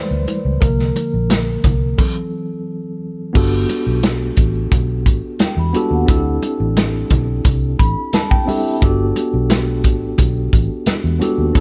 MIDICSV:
0, 0, Header, 1, 6, 480
1, 0, Start_track
1, 0, Tempo, 683371
1, 434, Time_signature, 4, 2, 24, 8
1, 8150, End_track
2, 0, Start_track
2, 0, Title_t, "Vibraphone"
2, 0, Program_c, 0, 11
2, 3804, Note_on_c, 0, 79, 72
2, 3914, Note_off_c, 0, 79, 0
2, 3926, Note_on_c, 0, 83, 92
2, 4035, Note_off_c, 0, 83, 0
2, 4048, Note_on_c, 0, 81, 86
2, 4156, Note_off_c, 0, 81, 0
2, 4171, Note_on_c, 0, 78, 82
2, 4391, Note_off_c, 0, 78, 0
2, 8150, End_track
3, 0, Start_track
3, 0, Title_t, "Tine electric piano"
3, 0, Program_c, 1, 4
3, 0, Control_c, 1, 64, 127
3, 0, Note_on_c, 1, 52, 51
3, 0, Note_on_c, 1, 55, 44
3, 0, Note_on_c, 1, 57, 53
3, 0, Note_on_c, 1, 71, 82
3, 0, Note_on_c, 1, 72, 106
3, 0, Note_on_c, 1, 74, 101
3, 426, Note_on_c, 1, 70, 94
3, 431, Note_on_c, 1, 50, 57
3, 433, Note_on_c, 1, 53, 52
3, 437, Note_on_c, 1, 58, 65
3, 444, Control_c, 1, 64, 0
3, 445, Note_off_c, 1, 52, 0
3, 446, Note_off_c, 1, 74, 0
3, 447, Note_off_c, 1, 55, 0
3, 449, Note_off_c, 1, 57, 0
3, 450, Note_off_c, 1, 71, 0
3, 460, Note_off_c, 1, 72, 0
3, 549, Control_c, 1, 64, 127
3, 751, Note_off_c, 1, 50, 0
3, 752, Note_off_c, 1, 53, 0
3, 755, Note_off_c, 1, 58, 0
3, 1391, Note_on_c, 1, 69, 78
3, 1395, Note_on_c, 1, 52, 58
3, 1401, Note_on_c, 1, 54, 52
3, 1402, Control_c, 1, 64, 0
3, 1405, Note_on_c, 1, 60, 60
3, 1419, Note_off_c, 1, 70, 0
3, 1511, Control_c, 1, 64, 127
3, 1714, Note_off_c, 1, 52, 0
3, 1717, Note_off_c, 1, 54, 0
3, 1719, Note_off_c, 1, 60, 0
3, 2085, Note_off_c, 1, 69, 0
3, 2340, Note_on_c, 1, 59, 90
3, 2346, Note_on_c, 1, 62, 83
3, 2352, Note_on_c, 1, 66, 81
3, 2360, Note_on_c, 1, 67, 80
3, 2364, Control_c, 1, 64, 0
3, 2368, Note_on_c, 1, 69, 99
3, 2502, Control_c, 1, 64, 127
3, 2945, Note_off_c, 1, 59, 0
3, 2948, Note_off_c, 1, 62, 0
3, 2951, Note_off_c, 1, 66, 0
3, 2955, Note_off_c, 1, 67, 0
3, 2959, Note_off_c, 1, 69, 0
3, 4024, Note_on_c, 1, 59, 92
3, 4031, Note_on_c, 1, 62, 83
3, 4037, Note_on_c, 1, 66, 85
3, 4042, Note_on_c, 1, 67, 83
3, 4050, Note_on_c, 1, 69, 100
3, 4179, Note_off_c, 1, 59, 0
3, 4183, Note_off_c, 1, 62, 0
3, 4186, Note_off_c, 1, 66, 0
3, 4188, Note_off_c, 1, 67, 0
3, 4192, Note_off_c, 1, 69, 0
3, 4257, Note_on_c, 1, 60, 87
3, 4263, Note_on_c, 1, 62, 85
3, 4272, Note_on_c, 1, 64, 81
3, 4280, Note_on_c, 1, 66, 68
3, 4286, Control_c, 1, 64, 0
3, 4286, Note_on_c, 1, 69, 104
3, 4323, Note_off_c, 1, 66, 0
3, 4326, Note_on_c, 1, 67, 80
3, 4407, Control_c, 1, 64, 127
3, 4864, Note_off_c, 1, 60, 0
3, 4867, Note_off_c, 1, 62, 0
3, 4871, Note_off_c, 1, 64, 0
3, 4878, Note_off_c, 1, 69, 0
3, 4898, Note_off_c, 1, 67, 0
3, 5473, Note_on_c, 1, 83, 68
3, 5698, Note_off_c, 1, 83, 0
3, 5718, Note_on_c, 1, 81, 76
3, 5829, Note_off_c, 1, 81, 0
3, 5836, Note_on_c, 1, 79, 76
3, 5941, Note_on_c, 1, 60, 93
3, 5948, Note_off_c, 1, 79, 0
3, 5949, Note_on_c, 1, 62, 83
3, 5954, Note_on_c, 1, 76, 75
3, 5955, Note_on_c, 1, 64, 85
3, 5963, Note_on_c, 1, 67, 84
3, 5969, Note_on_c, 1, 69, 101
3, 6097, Note_off_c, 1, 60, 0
3, 6101, Note_off_c, 1, 62, 0
3, 6104, Note_off_c, 1, 64, 0
3, 6108, Note_off_c, 1, 67, 0
3, 6112, Note_off_c, 1, 69, 0
3, 6178, Note_off_c, 1, 76, 0
3, 6185, Note_on_c, 1, 59, 92
3, 6191, Note_on_c, 1, 62, 82
3, 6198, Note_on_c, 1, 66, 85
3, 6204, Control_c, 1, 64, 0
3, 6205, Note_on_c, 1, 67, 86
3, 6210, Note_on_c, 1, 69, 97
3, 6313, Control_c, 1, 64, 127
3, 6787, Note_off_c, 1, 59, 0
3, 6790, Note_off_c, 1, 62, 0
3, 6793, Note_off_c, 1, 66, 0
3, 6797, Note_off_c, 1, 67, 0
3, 6800, Note_off_c, 1, 69, 0
3, 7861, Note_on_c, 1, 59, 89
3, 7866, Note_on_c, 1, 62, 84
3, 7874, Note_on_c, 1, 66, 88
3, 7879, Note_on_c, 1, 67, 87
3, 7888, Note_on_c, 1, 69, 109
3, 8017, Note_off_c, 1, 59, 0
3, 8019, Note_off_c, 1, 62, 0
3, 8023, Note_off_c, 1, 66, 0
3, 8026, Note_off_c, 1, 67, 0
3, 8030, Note_off_c, 1, 69, 0
3, 8102, Note_on_c, 1, 60, 90
3, 8110, Note_on_c, 1, 62, 79
3, 8115, Note_on_c, 1, 64, 86
3, 8122, Note_on_c, 1, 66, 66
3, 8124, Control_c, 1, 64, 0
3, 8150, Note_off_c, 1, 60, 0
3, 8150, Note_off_c, 1, 62, 0
3, 8150, Note_off_c, 1, 64, 0
3, 8150, Note_off_c, 1, 66, 0
3, 8150, End_track
4, 0, Start_track
4, 0, Title_t, "Fingered electric bass"
4, 0, Program_c, 2, 33
4, 76, Note_on_c, 2, 38, 80
4, 176, Note_off_c, 2, 38, 0
4, 315, Note_on_c, 2, 37, 89
4, 415, Note_off_c, 2, 37, 0
4, 434, Note_on_c, 2, 36, 114
4, 635, Note_off_c, 2, 36, 0
4, 799, Note_on_c, 2, 34, 78
4, 1099, Note_off_c, 2, 34, 0
4, 1153, Note_on_c, 2, 36, 82
4, 1355, Note_off_c, 2, 36, 0
4, 2354, Note_on_c, 2, 31, 112
4, 2556, Note_off_c, 2, 31, 0
4, 2715, Note_on_c, 2, 35, 82
4, 3017, Note_off_c, 2, 35, 0
4, 3072, Note_on_c, 2, 33, 81
4, 3275, Note_off_c, 2, 33, 0
4, 3314, Note_on_c, 2, 35, 94
4, 3554, Note_off_c, 2, 35, 0
4, 3554, Note_on_c, 2, 33, 85
4, 3655, Note_off_c, 2, 33, 0
4, 3910, Note_on_c, 2, 40, 97
4, 4013, Note_off_c, 2, 40, 0
4, 4149, Note_on_c, 2, 39, 87
4, 4252, Note_off_c, 2, 39, 0
4, 4275, Note_on_c, 2, 38, 115
4, 4476, Note_off_c, 2, 38, 0
4, 4636, Note_on_c, 2, 33, 86
4, 4938, Note_off_c, 2, 33, 0
4, 4992, Note_on_c, 2, 35, 83
4, 5195, Note_off_c, 2, 35, 0
4, 5233, Note_on_c, 2, 36, 98
4, 5435, Note_off_c, 2, 36, 0
4, 5476, Note_on_c, 2, 33, 96
4, 5577, Note_off_c, 2, 33, 0
4, 6196, Note_on_c, 2, 31, 119
4, 6397, Note_off_c, 2, 31, 0
4, 6557, Note_on_c, 2, 35, 92
4, 6912, Note_off_c, 2, 35, 0
4, 6912, Note_on_c, 2, 33, 102
4, 7114, Note_off_c, 2, 33, 0
4, 7154, Note_on_c, 2, 35, 99
4, 7356, Note_off_c, 2, 35, 0
4, 7398, Note_on_c, 2, 33, 99
4, 7497, Note_off_c, 2, 33, 0
4, 7754, Note_on_c, 2, 40, 80
4, 7855, Note_off_c, 2, 40, 0
4, 7994, Note_on_c, 2, 39, 84
4, 8095, Note_off_c, 2, 39, 0
4, 8114, Note_on_c, 2, 38, 119
4, 8150, Note_off_c, 2, 38, 0
4, 8150, End_track
5, 0, Start_track
5, 0, Title_t, "Muted fingered electric bass strokes"
5, 3790, Note_on_c, 9, 29, 45
5, 3860, Note_off_c, 9, 29, 0
5, 7638, Note_on_c, 9, 29, 50
5, 7708, Note_off_c, 9, 29, 0
5, 8150, End_track
6, 0, Start_track
6, 0, Title_t, "Drums"
6, 194, Note_on_c, 9, 42, 75
6, 195, Note_on_c, 9, 63, 63
6, 264, Note_off_c, 9, 42, 0
6, 266, Note_off_c, 9, 63, 0
6, 433, Note_on_c, 9, 36, 104
6, 435, Note_on_c, 9, 42, 85
6, 435, Note_on_c, 9, 62, 48
6, 504, Note_off_c, 9, 36, 0
6, 505, Note_off_c, 9, 42, 0
6, 505, Note_off_c, 9, 62, 0
6, 556, Note_on_c, 9, 38, 34
6, 626, Note_off_c, 9, 38, 0
6, 674, Note_on_c, 9, 62, 50
6, 676, Note_on_c, 9, 42, 72
6, 744, Note_off_c, 9, 62, 0
6, 746, Note_off_c, 9, 42, 0
6, 912, Note_on_c, 9, 63, 69
6, 916, Note_on_c, 9, 42, 89
6, 922, Note_on_c, 9, 38, 111
6, 983, Note_off_c, 9, 63, 0
6, 986, Note_off_c, 9, 42, 0
6, 992, Note_off_c, 9, 38, 0
6, 1151, Note_on_c, 9, 42, 78
6, 1153, Note_on_c, 9, 36, 88
6, 1156, Note_on_c, 9, 64, 78
6, 1221, Note_off_c, 9, 42, 0
6, 1223, Note_off_c, 9, 36, 0
6, 1226, Note_off_c, 9, 64, 0
6, 1394, Note_on_c, 9, 36, 106
6, 1394, Note_on_c, 9, 49, 86
6, 1464, Note_off_c, 9, 49, 0
6, 1465, Note_off_c, 9, 36, 0
6, 2353, Note_on_c, 9, 49, 99
6, 2354, Note_on_c, 9, 36, 107
6, 2357, Note_on_c, 9, 62, 50
6, 2424, Note_off_c, 9, 49, 0
6, 2425, Note_off_c, 9, 36, 0
6, 2427, Note_off_c, 9, 62, 0
6, 2592, Note_on_c, 9, 42, 72
6, 2596, Note_on_c, 9, 62, 50
6, 2662, Note_off_c, 9, 42, 0
6, 2666, Note_off_c, 9, 62, 0
6, 2832, Note_on_c, 9, 42, 93
6, 2834, Note_on_c, 9, 63, 77
6, 2838, Note_on_c, 9, 38, 119
6, 2902, Note_off_c, 9, 42, 0
6, 2904, Note_off_c, 9, 63, 0
6, 2908, Note_off_c, 9, 38, 0
6, 3067, Note_on_c, 9, 42, 84
6, 3072, Note_on_c, 9, 36, 92
6, 3137, Note_off_c, 9, 42, 0
6, 3142, Note_off_c, 9, 36, 0
6, 3313, Note_on_c, 9, 36, 105
6, 3314, Note_on_c, 9, 42, 94
6, 3314, Note_on_c, 9, 62, 50
6, 3314, Note_on_c, 9, 64, 74
6, 3384, Note_off_c, 9, 36, 0
6, 3384, Note_off_c, 9, 62, 0
6, 3384, Note_off_c, 9, 64, 0
6, 3385, Note_off_c, 9, 42, 0
6, 3554, Note_on_c, 9, 36, 89
6, 3560, Note_on_c, 9, 42, 67
6, 3561, Note_on_c, 9, 62, 33
6, 3625, Note_off_c, 9, 36, 0
6, 3630, Note_off_c, 9, 42, 0
6, 3631, Note_off_c, 9, 62, 0
6, 3788, Note_on_c, 9, 42, 86
6, 3794, Note_on_c, 9, 63, 81
6, 3795, Note_on_c, 9, 38, 114
6, 3858, Note_off_c, 9, 42, 0
6, 3864, Note_off_c, 9, 63, 0
6, 3865, Note_off_c, 9, 38, 0
6, 4033, Note_on_c, 9, 42, 75
6, 4039, Note_on_c, 9, 63, 64
6, 4104, Note_off_c, 9, 42, 0
6, 4109, Note_off_c, 9, 63, 0
6, 4272, Note_on_c, 9, 42, 87
6, 4274, Note_on_c, 9, 36, 116
6, 4277, Note_on_c, 9, 62, 48
6, 4342, Note_off_c, 9, 42, 0
6, 4344, Note_off_c, 9, 36, 0
6, 4347, Note_off_c, 9, 62, 0
6, 4512, Note_on_c, 9, 42, 76
6, 4513, Note_on_c, 9, 62, 50
6, 4583, Note_off_c, 9, 42, 0
6, 4584, Note_off_c, 9, 62, 0
6, 4753, Note_on_c, 9, 63, 78
6, 4755, Note_on_c, 9, 42, 96
6, 4761, Note_on_c, 9, 38, 118
6, 4824, Note_off_c, 9, 63, 0
6, 4825, Note_off_c, 9, 42, 0
6, 4831, Note_off_c, 9, 38, 0
6, 4988, Note_on_c, 9, 42, 79
6, 4992, Note_on_c, 9, 36, 90
6, 4996, Note_on_c, 9, 64, 81
6, 5058, Note_off_c, 9, 42, 0
6, 5062, Note_off_c, 9, 36, 0
6, 5066, Note_off_c, 9, 64, 0
6, 5229, Note_on_c, 9, 42, 93
6, 5232, Note_on_c, 9, 36, 109
6, 5235, Note_on_c, 9, 62, 49
6, 5300, Note_off_c, 9, 42, 0
6, 5303, Note_off_c, 9, 36, 0
6, 5305, Note_off_c, 9, 62, 0
6, 5475, Note_on_c, 9, 36, 91
6, 5479, Note_on_c, 9, 42, 65
6, 5479, Note_on_c, 9, 62, 33
6, 5545, Note_off_c, 9, 36, 0
6, 5549, Note_off_c, 9, 42, 0
6, 5549, Note_off_c, 9, 62, 0
6, 5710, Note_on_c, 9, 42, 89
6, 5713, Note_on_c, 9, 63, 75
6, 5717, Note_on_c, 9, 38, 118
6, 5780, Note_off_c, 9, 42, 0
6, 5784, Note_off_c, 9, 63, 0
6, 5787, Note_off_c, 9, 38, 0
6, 5838, Note_on_c, 9, 36, 97
6, 5909, Note_off_c, 9, 36, 0
6, 5959, Note_on_c, 9, 46, 55
6, 5959, Note_on_c, 9, 63, 65
6, 6029, Note_off_c, 9, 46, 0
6, 6029, Note_off_c, 9, 63, 0
6, 6196, Note_on_c, 9, 36, 110
6, 6196, Note_on_c, 9, 42, 91
6, 6199, Note_on_c, 9, 62, 49
6, 6266, Note_off_c, 9, 36, 0
6, 6266, Note_off_c, 9, 42, 0
6, 6269, Note_off_c, 9, 62, 0
6, 6433, Note_on_c, 9, 62, 53
6, 6434, Note_on_c, 9, 42, 75
6, 6504, Note_off_c, 9, 42, 0
6, 6504, Note_off_c, 9, 62, 0
6, 6672, Note_on_c, 9, 63, 77
6, 6676, Note_on_c, 9, 42, 89
6, 6683, Note_on_c, 9, 38, 119
6, 6742, Note_off_c, 9, 63, 0
6, 6746, Note_off_c, 9, 42, 0
6, 6753, Note_off_c, 9, 38, 0
6, 6911, Note_on_c, 9, 42, 80
6, 6914, Note_on_c, 9, 36, 86
6, 6981, Note_off_c, 9, 42, 0
6, 6984, Note_off_c, 9, 36, 0
6, 7151, Note_on_c, 9, 62, 52
6, 7151, Note_on_c, 9, 64, 69
6, 7154, Note_on_c, 9, 42, 93
6, 7155, Note_on_c, 9, 36, 105
6, 7221, Note_off_c, 9, 62, 0
6, 7221, Note_off_c, 9, 64, 0
6, 7224, Note_off_c, 9, 42, 0
6, 7225, Note_off_c, 9, 36, 0
6, 7396, Note_on_c, 9, 36, 89
6, 7402, Note_on_c, 9, 42, 67
6, 7466, Note_off_c, 9, 36, 0
6, 7472, Note_off_c, 9, 42, 0
6, 7629, Note_on_c, 9, 42, 90
6, 7632, Note_on_c, 9, 63, 78
6, 7636, Note_on_c, 9, 38, 114
6, 7699, Note_off_c, 9, 42, 0
6, 7702, Note_off_c, 9, 63, 0
6, 7706, Note_off_c, 9, 38, 0
6, 7876, Note_on_c, 9, 63, 64
6, 7877, Note_on_c, 9, 42, 77
6, 7946, Note_off_c, 9, 63, 0
6, 7947, Note_off_c, 9, 42, 0
6, 8112, Note_on_c, 9, 42, 88
6, 8114, Note_on_c, 9, 36, 106
6, 8117, Note_on_c, 9, 62, 47
6, 8150, Note_off_c, 9, 36, 0
6, 8150, Note_off_c, 9, 42, 0
6, 8150, Note_off_c, 9, 62, 0
6, 8150, End_track
0, 0, End_of_file